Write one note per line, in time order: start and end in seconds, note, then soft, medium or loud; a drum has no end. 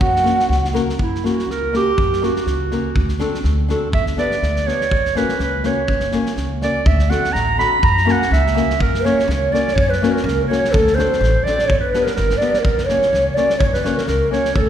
0.00 0.30 F#2 medium
0.00 0.71 F#4 medium
0.00 0.70 F#5 loud
0.00 kick medium
0.16 snare soft
0.23 0.42 A#3 medium
0.23 0.42 C#4 medium
0.23 0.42 F#4 medium
0.23 0.43 A#4 medium
0.23 snare soft
0.40 snare soft
0.49 0.79 C#2 loud
0.49 snare soft
0.65 snare soft
0.73 0.91 A#3 medium
0.73 0.92 C#4 medium
0.73 0.92 F#4 medium
0.73 0.92 A#4 medium
0.73 snare soft
0.89 snare soft
0.99 1.28 F#2 medium
0.99 1.27 E4 medium
0.99 kick medium
1.15 snare soft
1.24 1.41 A#3 medium
1.24 1.41 C#4 medium
1.24 1.42 F#4 soft
1.24 1.52 F#4 medium
1.24 1.42 A#4 medium
1.24 snare soft
1.39 snare soft
1.47 1.77 C#2 medium
1.47 snare soft
1.51 1.74 A#4 medium
1.73 1.90 A#3 medium
1.73 1.91 C#4 soft
1.73 1.91 F#4 soft
1.73 2.20 G4 loud
1.73 1.91 A#4 medium
1.73 snare soft
1.97 2.27 F#2 medium
1.97 kick medium
2.13 snare soft
2.22 2.39 A#3 medium
2.22 2.40 C#4 medium
2.22 2.40 F#4 medium
2.22 3.42 F#4 medium
2.22 2.40 A#4 medium
2.22 snare soft
2.36 snare soft
2.46 2.76 C#2 medium
2.46 snare soft
2.71 2.89 A#3 medium
2.71 2.89 C#4 soft
2.71 2.89 F#4 soft
2.71 2.90 A#4 medium
2.71 snare soft
2.95 3.25 D2 medium
2.95 kick medium
3.09 snare soft
3.19 3.37 C4 medium
3.19 3.37 D4 medium
3.19 3.38 F#4 medium
3.19 3.38 A4 medium
3.19 snare soft
3.34 snare soft
3.44 3.74 D2 medium
3.44 snare soft
3.68 3.86 C4 medium
3.68 3.87 D4 medium
3.68 3.87 F#4 medium
3.68 3.88 A4 medium
3.68 snare soft
3.92 4.22 G1 medium
3.92 4.05 E5 medium
3.92 kick medium
4.07 snare soft
4.17 4.35 B3 medium
4.17 4.35 D4 medium
4.17 4.36 G4 medium
4.17 4.36 B4 medium
4.17 4.69 D5 medium
4.17 snare soft
4.31 snare soft
4.42 4.72 D2 medium
4.42 snare soft
4.56 snare soft
4.66 4.84 B3 soft
4.66 4.85 D4 soft
4.66 4.85 G4 medium
4.66 4.85 B4 medium
4.66 5.18 C#5 medium
4.66 snare soft
4.81 snare soft
4.91 5.21 F#1 medium
4.91 kick medium
5.05 snare soft
5.15 5.33 A#3 medium
5.15 5.33 C#4 medium
5.15 5.33 F#4 medium
5.15 5.34 A#4 medium
5.15 5.41 B4 medium
5.15 snare soft
5.29 snare soft
5.39 5.69 C#2 medium
5.39 5.68 B4 medium
5.39 snare soft
5.64 5.82 A#3 medium
5.64 5.82 C#4 soft
5.64 5.82 F#4 medium
5.64 5.83 A#4 medium
5.64 6.15 C#5 medium
5.64 snare soft
5.87 6.17 F#1 medium
5.87 kick medium
6.00 snare soft
6.12 6.30 A#3 medium
6.12 6.31 C#4 medium
6.12 6.31 F#4 medium
6.12 6.31 A#4 medium
6.12 snare soft
6.26 snare soft
6.37 6.66 C#2 medium
6.37 snare soft
6.61 6.79 A#3 medium
6.61 6.80 C#4 medium
6.61 6.80 F#4 soft
6.61 6.80 A#4 medium
6.61 6.88 D5 medium
6.61 snare soft
6.85 7.15 D2 loud
6.85 7.11 E5 medium
6.85 kick medium
6.99 snare soft
7.10 7.28 C4 medium
7.10 7.28 D4 medium
7.10 7.28 F#4 medium
7.10 7.28 A4 medium
7.10 7.34 F#5 medium
7.10 snare soft
7.24 snare soft
7.33 7.64 A1 medium
7.33 7.58 A#5 loud
7.33 snare soft
7.58 7.76 C4 medium
7.58 7.76 D4 medium
7.58 7.76 F#4 medium
7.58 7.77 A4 medium
7.58 7.86 B5 loud
7.58 snare soft
7.83 8.12 F#2 loud
7.83 8.13 A#5 loud
7.83 kick medium
7.98 snare soft
8.05 8.24 A#3 medium
8.05 8.24 C#4 medium
8.05 8.24 F#4 medium
8.05 8.25 A#4 medium
8.05 snare soft
8.11 8.33 F#5 medium
8.22 snare soft
8.31 8.60 C#2 loud
8.31 8.78 E5 medium
8.31 snare soft
8.47 snare soft
8.55 8.73 A#3 medium
8.55 8.73 C#4 medium
8.55 8.74 F#4 medium
8.55 8.74 A#4 medium
8.55 snare soft
8.70 snare soft
8.79 9.09 F#2 medium
8.79 9.06 A#4 loud
8.79 9.07 A#4 medium
8.79 kick medium
8.94 snare soft
9.04 9.22 A#3 medium
9.04 9.22 C#4 medium
9.04 9.22 F#4 medium
9.04 9.22 A#4 medium
9.04 9.54 C#5 loud
9.04 9.55 C#5 medium
9.04 snare soft
9.19 snare soft
9.28 9.43 C#2 loud
9.28 snare soft
9.52 9.70 A#3 medium
9.52 9.70 C#4 medium
9.52 9.70 F#4 medium
9.52 9.71 A#4 medium
9.52 9.74 D5 loud
9.52 9.78 D5 medium
9.52 snare soft
9.68 snare soft
9.73 10.05 F#2 medium
9.73 9.91 C#5 loud
9.73 9.92 C#5 medium
9.78 kick medium
9.90 10.16 B4 loud
9.90 10.14 B4 medium
9.90 snare soft
10.02 10.19 A#3 medium
10.02 10.19 C#4 medium
10.02 10.19 F#4 medium
10.02 10.19 A#4 medium
10.02 snare soft
10.12 10.24 A#4 medium
10.12 10.23 A#4 medium
10.17 snare soft
10.23 10.39 C#2 loud
10.23 10.46 A#4 loud
10.23 10.47 A#4 medium
10.28 snare soft
10.46 10.67 A#3 medium
10.46 10.67 C#4 medium
10.46 10.74 C#5 loud
10.46 10.72 C#5 medium
10.51 10.67 F#4 medium
10.51 10.67 A#4 medium
10.51 snare soft
10.65 snare soft
10.71 11.02 D2 loud
10.71 10.99 A4 medium
10.71 10.96 A4 loud
10.71 kick medium
10.87 snare soft
10.95 11.14 C4 medium
10.95 11.15 D4 medium
10.95 11.46 C5 loud
10.95 11.45 C5 medium
10.99 11.15 F#4 medium
10.99 11.15 A4 medium
10.99 snare soft
11.13 snare soft
11.21 11.35 A1 loud
11.21 snare soft
11.44 11.63 C4 medium
11.44 11.63 D4 soft
11.44 11.70 D5 medium
11.44 11.67 D5 loud
11.44 snare soft
11.48 11.64 F#4 soft
11.48 11.64 A4 medium
11.59 snare soft
11.65 11.98 G1 medium
11.65 11.80 C#5 loud
11.65 11.80 C#5 medium
11.70 kick medium
11.80 12.06 B4 medium
11.80 12.05 B4 medium
11.94 12.11 B3 medium
11.94 12.11 D4 medium
11.94 12.11 G4 medium
11.94 12.11 B4 medium
11.94 snare soft
12.04 12.15 A#4 medium
12.04 12.14 A#4 medium
12.04 snare soft
12.15 12.32 G1 loud
12.15 12.39 A#4 medium
12.15 snare soft
12.30 snare soft
12.37 12.58 B3 medium
12.37 12.60 D5 medium
12.37 12.65 D5 medium
12.37 snare soft
12.41 12.58 D4 medium
12.41 12.58 G4 soft
12.41 12.59 B4 medium
12.54 snare soft
12.59 12.86 A#4 medium
12.64 12.94 F#1 medium
12.64 12.88 A#4 medium
12.64 kick medium
12.78 snare soft
12.85 13.35 C#5 loud
12.85 13.37 C#5 medium
12.89 13.06 A#3 medium
12.89 13.06 C#4 medium
12.89 13.07 F#4 medium
12.89 13.07 A#4 medium
12.89 snare soft
13.02 snare soft
13.13 13.27 C#2 loud
13.13 snare soft
13.34 13.53 A#3 medium
13.34 13.53 C#4 medium
13.34 13.54 F#4 soft
13.34 13.56 D5 loud
13.34 13.58 D5 medium
13.34 snare soft
13.38 13.54 A#4 medium
13.50 snare soft
13.57 13.89 F#1 loud
13.57 13.71 C#5 loud
13.57 13.72 C#5 medium
13.57 kick medium
13.72 13.98 B4 medium
13.72 14.00 B4 medium
13.72 snare soft
13.84 14.01 A#3 medium
13.84 14.01 C#4 medium
13.84 14.01 F#4 medium
13.84 14.02 A#4 medium
13.84 snare soft
13.96 14.05 A#4 medium
13.96 14.08 A#4 medium
13.96 snare soft
14.06 14.22 C#2 loud
14.06 14.29 A#4 medium
14.06 14.30 A#4 medium
14.06 snare soft
14.31 14.48 A#3 medium
14.31 14.48 C#4 medium
14.31 14.49 F#4 soft
14.31 14.49 A#4 medium
14.31 14.54 C#5 medium
14.31 snare soft
14.45 snare soft
14.56 14.69 D2 loud
14.56 14.69 A4 medium
14.56 14.69 A4 loud
14.56 kick medium